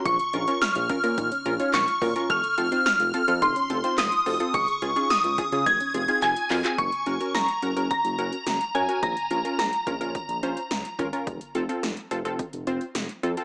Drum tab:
HH |xxxxxxxxxxxxxxox|xxxxxxxxxxxxxxox|xxxxxxxxxxxxxxox|xxxxxxxxxxxxxxxx|
CP |------------x---|------------x---|------------x-xx|----------------|
SD |----o-------o---|----o-------o---|----o-----------|----o-------o---|
BD |o-----o-o-----o-|o-------o-------|o-----o-o-------|o-------o-------|

HH |xxxxxxxxxxxxxxxx|xxxxxxxxxxxxxxxx|
CP |----------------|----------------|
SD |----o-------o---|----o-------o---|
BD |o-----o-o-----o-|o-------o-------|